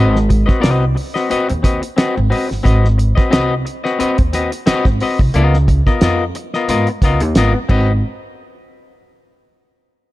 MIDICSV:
0, 0, Header, 1, 6, 480
1, 0, Start_track
1, 0, Tempo, 671892
1, 1895, Time_signature, 4, 2, 24, 8
1, 7232, End_track
2, 0, Start_track
2, 0, Title_t, "Clean electric guitar"
2, 0, Program_c, 0, 27
2, 0, Note_on_c, 0, 60, 85
2, 0, Note_on_c, 0, 66, 87
2, 0, Note_on_c, 0, 71, 86
2, 0, Note_on_c, 0, 75, 94
2, 121, Note_off_c, 0, 60, 0
2, 123, Note_off_c, 0, 66, 0
2, 124, Note_off_c, 0, 71, 0
2, 128, Note_off_c, 0, 75, 0
2, 328, Note_on_c, 0, 75, 62
2, 331, Note_on_c, 0, 71, 66
2, 339, Note_on_c, 0, 66, 65
2, 343, Note_on_c, 0, 60, 54
2, 421, Note_off_c, 0, 60, 0
2, 429, Note_off_c, 0, 66, 0
2, 430, Note_off_c, 0, 71, 0
2, 430, Note_on_c, 0, 60, 88
2, 434, Note_off_c, 0, 75, 0
2, 437, Note_on_c, 0, 66, 80
2, 439, Note_on_c, 0, 71, 92
2, 442, Note_on_c, 0, 75, 107
2, 597, Note_off_c, 0, 60, 0
2, 601, Note_off_c, 0, 66, 0
2, 602, Note_off_c, 0, 71, 0
2, 604, Note_off_c, 0, 75, 0
2, 816, Note_on_c, 0, 75, 71
2, 821, Note_on_c, 0, 71, 57
2, 826, Note_on_c, 0, 66, 64
2, 830, Note_on_c, 0, 60, 55
2, 921, Note_off_c, 0, 60, 0
2, 921, Note_off_c, 0, 75, 0
2, 924, Note_off_c, 0, 66, 0
2, 924, Note_off_c, 0, 71, 0
2, 929, Note_on_c, 0, 60, 76
2, 933, Note_on_c, 0, 66, 81
2, 936, Note_on_c, 0, 71, 94
2, 938, Note_on_c, 0, 75, 93
2, 1053, Note_off_c, 0, 75, 0
2, 1057, Note_off_c, 0, 71, 0
2, 1063, Note_off_c, 0, 66, 0
2, 1087, Note_off_c, 0, 60, 0
2, 1163, Note_on_c, 0, 60, 67
2, 1169, Note_on_c, 0, 66, 62
2, 1172, Note_on_c, 0, 71, 70
2, 1177, Note_on_c, 0, 75, 70
2, 1292, Note_off_c, 0, 75, 0
2, 1294, Note_off_c, 0, 60, 0
2, 1296, Note_off_c, 0, 71, 0
2, 1297, Note_off_c, 0, 66, 0
2, 1404, Note_on_c, 0, 60, 86
2, 1413, Note_on_c, 0, 71, 95
2, 1414, Note_on_c, 0, 66, 93
2, 1415, Note_on_c, 0, 75, 94
2, 1535, Note_off_c, 0, 75, 0
2, 1537, Note_off_c, 0, 71, 0
2, 1544, Note_off_c, 0, 66, 0
2, 1564, Note_off_c, 0, 60, 0
2, 1643, Note_on_c, 0, 60, 68
2, 1644, Note_on_c, 0, 66, 64
2, 1651, Note_on_c, 0, 71, 63
2, 1656, Note_on_c, 0, 75, 65
2, 1767, Note_off_c, 0, 75, 0
2, 1774, Note_off_c, 0, 60, 0
2, 1774, Note_off_c, 0, 66, 0
2, 1775, Note_off_c, 0, 71, 0
2, 1881, Note_on_c, 0, 60, 83
2, 1884, Note_on_c, 0, 66, 87
2, 1889, Note_on_c, 0, 71, 84
2, 1895, Note_on_c, 0, 75, 96
2, 2042, Note_off_c, 0, 60, 0
2, 2044, Note_off_c, 0, 66, 0
2, 2046, Note_off_c, 0, 71, 0
2, 2049, Note_off_c, 0, 75, 0
2, 2253, Note_on_c, 0, 75, 67
2, 2262, Note_on_c, 0, 71, 73
2, 2263, Note_on_c, 0, 66, 58
2, 2265, Note_on_c, 0, 60, 58
2, 2352, Note_off_c, 0, 60, 0
2, 2357, Note_off_c, 0, 66, 0
2, 2359, Note_off_c, 0, 75, 0
2, 2360, Note_on_c, 0, 60, 95
2, 2364, Note_off_c, 0, 71, 0
2, 2365, Note_on_c, 0, 66, 101
2, 2372, Note_on_c, 0, 71, 99
2, 2377, Note_on_c, 0, 75, 113
2, 2521, Note_off_c, 0, 60, 0
2, 2524, Note_off_c, 0, 66, 0
2, 2527, Note_off_c, 0, 71, 0
2, 2530, Note_off_c, 0, 75, 0
2, 2742, Note_on_c, 0, 75, 75
2, 2748, Note_on_c, 0, 66, 66
2, 2748, Note_on_c, 0, 71, 74
2, 2752, Note_on_c, 0, 60, 57
2, 2841, Note_off_c, 0, 60, 0
2, 2843, Note_off_c, 0, 75, 0
2, 2846, Note_off_c, 0, 66, 0
2, 2846, Note_off_c, 0, 71, 0
2, 2849, Note_on_c, 0, 60, 85
2, 2855, Note_on_c, 0, 71, 98
2, 2856, Note_on_c, 0, 66, 79
2, 2862, Note_on_c, 0, 75, 93
2, 2981, Note_off_c, 0, 75, 0
2, 2982, Note_off_c, 0, 71, 0
2, 2984, Note_off_c, 0, 66, 0
2, 3006, Note_off_c, 0, 60, 0
2, 3093, Note_on_c, 0, 60, 67
2, 3102, Note_on_c, 0, 66, 70
2, 3103, Note_on_c, 0, 71, 70
2, 3107, Note_on_c, 0, 75, 74
2, 3218, Note_off_c, 0, 60, 0
2, 3220, Note_off_c, 0, 75, 0
2, 3223, Note_off_c, 0, 66, 0
2, 3223, Note_off_c, 0, 71, 0
2, 3330, Note_on_c, 0, 60, 108
2, 3336, Note_on_c, 0, 66, 115
2, 3339, Note_on_c, 0, 71, 107
2, 3340, Note_on_c, 0, 75, 113
2, 3467, Note_off_c, 0, 75, 0
2, 3469, Note_off_c, 0, 71, 0
2, 3473, Note_off_c, 0, 66, 0
2, 3486, Note_off_c, 0, 60, 0
2, 3581, Note_on_c, 0, 60, 65
2, 3583, Note_on_c, 0, 66, 65
2, 3589, Note_on_c, 0, 71, 71
2, 3591, Note_on_c, 0, 75, 80
2, 3702, Note_off_c, 0, 60, 0
2, 3703, Note_off_c, 0, 66, 0
2, 3706, Note_off_c, 0, 71, 0
2, 3707, Note_off_c, 0, 75, 0
2, 3815, Note_on_c, 0, 59, 85
2, 3824, Note_on_c, 0, 65, 89
2, 3827, Note_on_c, 0, 70, 93
2, 3827, Note_on_c, 0, 75, 92
2, 3969, Note_off_c, 0, 59, 0
2, 3973, Note_off_c, 0, 65, 0
2, 3975, Note_off_c, 0, 70, 0
2, 3975, Note_off_c, 0, 75, 0
2, 4192, Note_on_c, 0, 70, 59
2, 4192, Note_on_c, 0, 75, 60
2, 4197, Note_on_c, 0, 65, 58
2, 4202, Note_on_c, 0, 59, 56
2, 4288, Note_off_c, 0, 70, 0
2, 4288, Note_off_c, 0, 75, 0
2, 4291, Note_off_c, 0, 65, 0
2, 4293, Note_off_c, 0, 59, 0
2, 4300, Note_on_c, 0, 59, 82
2, 4303, Note_on_c, 0, 65, 92
2, 4305, Note_on_c, 0, 70, 85
2, 4311, Note_on_c, 0, 75, 102
2, 4451, Note_off_c, 0, 59, 0
2, 4453, Note_off_c, 0, 65, 0
2, 4454, Note_off_c, 0, 70, 0
2, 4457, Note_off_c, 0, 75, 0
2, 4673, Note_on_c, 0, 75, 66
2, 4682, Note_on_c, 0, 70, 59
2, 4686, Note_on_c, 0, 59, 50
2, 4686, Note_on_c, 0, 65, 59
2, 4769, Note_off_c, 0, 75, 0
2, 4770, Note_off_c, 0, 59, 0
2, 4771, Note_off_c, 0, 65, 0
2, 4773, Note_off_c, 0, 70, 0
2, 4778, Note_on_c, 0, 59, 78
2, 4779, Note_on_c, 0, 65, 85
2, 4786, Note_on_c, 0, 70, 98
2, 4787, Note_on_c, 0, 75, 83
2, 4911, Note_off_c, 0, 75, 0
2, 4917, Note_off_c, 0, 70, 0
2, 4921, Note_off_c, 0, 65, 0
2, 4930, Note_off_c, 0, 59, 0
2, 5024, Note_on_c, 0, 59, 71
2, 5029, Note_on_c, 0, 70, 85
2, 5032, Note_on_c, 0, 65, 73
2, 5037, Note_on_c, 0, 75, 87
2, 5144, Note_off_c, 0, 59, 0
2, 5146, Note_off_c, 0, 70, 0
2, 5148, Note_off_c, 0, 65, 0
2, 5150, Note_off_c, 0, 75, 0
2, 5265, Note_on_c, 0, 59, 91
2, 5267, Note_on_c, 0, 65, 86
2, 5271, Note_on_c, 0, 70, 92
2, 5275, Note_on_c, 0, 75, 99
2, 5378, Note_off_c, 0, 75, 0
2, 5386, Note_off_c, 0, 70, 0
2, 5388, Note_off_c, 0, 65, 0
2, 5413, Note_off_c, 0, 59, 0
2, 5491, Note_on_c, 0, 60, 82
2, 5497, Note_on_c, 0, 66, 93
2, 5503, Note_on_c, 0, 71, 84
2, 5507, Note_on_c, 0, 75, 93
2, 5648, Note_off_c, 0, 60, 0
2, 5651, Note_off_c, 0, 66, 0
2, 5654, Note_off_c, 0, 71, 0
2, 5656, Note_off_c, 0, 75, 0
2, 7232, End_track
3, 0, Start_track
3, 0, Title_t, "Upright bass"
3, 0, Program_c, 1, 32
3, 0, Note_on_c, 1, 32, 111
3, 306, Note_off_c, 1, 32, 0
3, 456, Note_on_c, 1, 36, 84
3, 666, Note_off_c, 1, 36, 0
3, 1072, Note_on_c, 1, 39, 101
3, 1281, Note_off_c, 1, 39, 0
3, 1553, Note_on_c, 1, 32, 96
3, 1644, Note_off_c, 1, 32, 0
3, 1793, Note_on_c, 1, 31, 79
3, 1884, Note_off_c, 1, 31, 0
3, 1896, Note_on_c, 1, 32, 112
3, 2223, Note_off_c, 1, 32, 0
3, 2379, Note_on_c, 1, 36, 87
3, 2587, Note_off_c, 1, 36, 0
3, 2991, Note_on_c, 1, 39, 94
3, 3200, Note_off_c, 1, 39, 0
3, 3470, Note_on_c, 1, 32, 92
3, 3562, Note_off_c, 1, 32, 0
3, 3710, Note_on_c, 1, 36, 81
3, 3802, Note_off_c, 1, 36, 0
3, 3817, Note_on_c, 1, 37, 103
3, 4143, Note_off_c, 1, 37, 0
3, 4297, Note_on_c, 1, 41, 86
3, 4506, Note_off_c, 1, 41, 0
3, 4774, Note_on_c, 1, 44, 95
3, 4892, Note_off_c, 1, 44, 0
3, 5015, Note_on_c, 1, 37, 80
3, 5149, Note_off_c, 1, 37, 0
3, 5149, Note_on_c, 1, 39, 96
3, 5241, Note_off_c, 1, 39, 0
3, 5254, Note_on_c, 1, 32, 86
3, 5372, Note_off_c, 1, 32, 0
3, 5497, Note_on_c, 1, 32, 107
3, 5719, Note_off_c, 1, 32, 0
3, 7232, End_track
4, 0, Start_track
4, 0, Title_t, "Muted clean electric guitar strokes"
4, 208, Note_on_c, 9, 29, 42
4, 279, Note_off_c, 9, 29, 0
4, 679, Note_on_c, 9, 29, 48
4, 750, Note_off_c, 9, 29, 0
4, 1061, Note_on_c, 9, 29, 59
4, 1133, Note_off_c, 9, 29, 0
4, 1300, Note_on_c, 9, 29, 54
4, 1372, Note_off_c, 9, 29, 0
4, 1543, Note_on_c, 9, 29, 42
4, 1615, Note_off_c, 9, 29, 0
4, 1775, Note_on_c, 9, 29, 59
4, 1847, Note_off_c, 9, 29, 0
4, 2127, Note_on_c, 9, 29, 38
4, 2198, Note_off_c, 9, 29, 0
4, 2608, Note_on_c, 9, 29, 42
4, 2680, Note_off_c, 9, 29, 0
4, 3228, Note_on_c, 9, 29, 47
4, 3300, Note_off_c, 9, 29, 0
4, 3476, Note_on_c, 9, 29, 51
4, 3547, Note_off_c, 9, 29, 0
4, 4057, Note_on_c, 9, 29, 46
4, 4129, Note_off_c, 9, 29, 0
4, 4538, Note_on_c, 9, 29, 40
4, 4610, Note_off_c, 9, 29, 0
4, 4919, Note_on_c, 9, 29, 47
4, 4991, Note_off_c, 9, 29, 0
4, 5160, Note_on_c, 9, 29, 55
4, 5231, Note_off_c, 9, 29, 0
4, 5387, Note_on_c, 9, 29, 41
4, 5458, Note_off_c, 9, 29, 0
4, 7232, End_track
5, 0, Start_track
5, 0, Title_t, "Muted upright bass strokes"
5, 939, Note_on_c, 9, 29, 54
5, 1010, Note_off_c, 9, 29, 0
5, 1418, Note_on_c, 9, 29, 44
5, 1489, Note_off_c, 9, 29, 0
5, 2859, Note_on_c, 9, 29, 47
5, 2930, Note_off_c, 9, 29, 0
5, 3343, Note_on_c, 9, 29, 47
5, 3414, Note_off_c, 9, 29, 0
5, 7232, End_track
6, 0, Start_track
6, 0, Title_t, "Drums"
6, 112, Note_on_c, 9, 38, 36
6, 184, Note_off_c, 9, 38, 0
6, 216, Note_on_c, 9, 42, 63
6, 217, Note_on_c, 9, 36, 77
6, 288, Note_off_c, 9, 42, 0
6, 289, Note_off_c, 9, 36, 0
6, 346, Note_on_c, 9, 38, 38
6, 349, Note_on_c, 9, 36, 100
6, 417, Note_off_c, 9, 38, 0
6, 421, Note_off_c, 9, 36, 0
6, 453, Note_on_c, 9, 42, 83
6, 457, Note_on_c, 9, 38, 122
6, 524, Note_off_c, 9, 42, 0
6, 528, Note_off_c, 9, 38, 0
6, 695, Note_on_c, 9, 46, 60
6, 766, Note_off_c, 9, 46, 0
6, 826, Note_on_c, 9, 38, 38
6, 897, Note_off_c, 9, 38, 0
6, 934, Note_on_c, 9, 42, 98
6, 1006, Note_off_c, 9, 42, 0
6, 1068, Note_on_c, 9, 42, 52
6, 1139, Note_off_c, 9, 42, 0
6, 1172, Note_on_c, 9, 36, 93
6, 1175, Note_on_c, 9, 42, 102
6, 1177, Note_on_c, 9, 38, 36
6, 1243, Note_off_c, 9, 36, 0
6, 1246, Note_off_c, 9, 42, 0
6, 1248, Note_off_c, 9, 38, 0
6, 1306, Note_on_c, 9, 42, 70
6, 1377, Note_off_c, 9, 42, 0
6, 1413, Note_on_c, 9, 42, 100
6, 1416, Note_on_c, 9, 38, 123
6, 1484, Note_off_c, 9, 42, 0
6, 1488, Note_off_c, 9, 38, 0
6, 1657, Note_on_c, 9, 46, 76
6, 1728, Note_off_c, 9, 46, 0
6, 1793, Note_on_c, 9, 38, 37
6, 1864, Note_off_c, 9, 38, 0
6, 1896, Note_on_c, 9, 36, 108
6, 1899, Note_on_c, 9, 42, 85
6, 1967, Note_off_c, 9, 36, 0
6, 1971, Note_off_c, 9, 42, 0
6, 2035, Note_on_c, 9, 38, 38
6, 2106, Note_off_c, 9, 38, 0
6, 2138, Note_on_c, 9, 42, 67
6, 2210, Note_off_c, 9, 42, 0
6, 2269, Note_on_c, 9, 36, 104
6, 2270, Note_on_c, 9, 38, 38
6, 2341, Note_off_c, 9, 36, 0
6, 2342, Note_off_c, 9, 38, 0
6, 2376, Note_on_c, 9, 42, 95
6, 2380, Note_on_c, 9, 38, 127
6, 2448, Note_off_c, 9, 42, 0
6, 2451, Note_off_c, 9, 38, 0
6, 2619, Note_on_c, 9, 42, 76
6, 2691, Note_off_c, 9, 42, 0
6, 2753, Note_on_c, 9, 38, 36
6, 2825, Note_off_c, 9, 38, 0
6, 2858, Note_on_c, 9, 42, 100
6, 2929, Note_off_c, 9, 42, 0
6, 2987, Note_on_c, 9, 42, 52
6, 2992, Note_on_c, 9, 36, 101
6, 3058, Note_off_c, 9, 42, 0
6, 3063, Note_off_c, 9, 36, 0
6, 3096, Note_on_c, 9, 42, 99
6, 3098, Note_on_c, 9, 38, 36
6, 3167, Note_off_c, 9, 42, 0
6, 3169, Note_off_c, 9, 38, 0
6, 3231, Note_on_c, 9, 42, 68
6, 3302, Note_off_c, 9, 42, 0
6, 3334, Note_on_c, 9, 42, 100
6, 3337, Note_on_c, 9, 38, 117
6, 3405, Note_off_c, 9, 42, 0
6, 3408, Note_off_c, 9, 38, 0
6, 3467, Note_on_c, 9, 36, 109
6, 3467, Note_on_c, 9, 38, 35
6, 3538, Note_off_c, 9, 36, 0
6, 3538, Note_off_c, 9, 38, 0
6, 3575, Note_on_c, 9, 46, 74
6, 3646, Note_off_c, 9, 46, 0
6, 3710, Note_on_c, 9, 36, 95
6, 3781, Note_off_c, 9, 36, 0
6, 3814, Note_on_c, 9, 42, 92
6, 3886, Note_off_c, 9, 42, 0
6, 3955, Note_on_c, 9, 38, 32
6, 4026, Note_off_c, 9, 38, 0
6, 4058, Note_on_c, 9, 36, 85
6, 4061, Note_on_c, 9, 42, 75
6, 4130, Note_off_c, 9, 36, 0
6, 4132, Note_off_c, 9, 42, 0
6, 4189, Note_on_c, 9, 38, 39
6, 4191, Note_on_c, 9, 36, 93
6, 4260, Note_off_c, 9, 38, 0
6, 4262, Note_off_c, 9, 36, 0
6, 4294, Note_on_c, 9, 42, 95
6, 4297, Note_on_c, 9, 38, 120
6, 4365, Note_off_c, 9, 42, 0
6, 4369, Note_off_c, 9, 38, 0
6, 4536, Note_on_c, 9, 42, 78
6, 4608, Note_off_c, 9, 42, 0
6, 4669, Note_on_c, 9, 38, 38
6, 4741, Note_off_c, 9, 38, 0
6, 4778, Note_on_c, 9, 42, 105
6, 4849, Note_off_c, 9, 42, 0
6, 4907, Note_on_c, 9, 42, 45
6, 4978, Note_off_c, 9, 42, 0
6, 5013, Note_on_c, 9, 36, 93
6, 5016, Note_on_c, 9, 42, 88
6, 5018, Note_on_c, 9, 38, 35
6, 5085, Note_off_c, 9, 36, 0
6, 5087, Note_off_c, 9, 42, 0
6, 5089, Note_off_c, 9, 38, 0
6, 5146, Note_on_c, 9, 42, 61
6, 5218, Note_off_c, 9, 42, 0
6, 5252, Note_on_c, 9, 42, 103
6, 5256, Note_on_c, 9, 38, 118
6, 5324, Note_off_c, 9, 42, 0
6, 5327, Note_off_c, 9, 38, 0
6, 5496, Note_on_c, 9, 36, 100
6, 5496, Note_on_c, 9, 49, 80
6, 5568, Note_off_c, 9, 36, 0
6, 5568, Note_off_c, 9, 49, 0
6, 7232, End_track
0, 0, End_of_file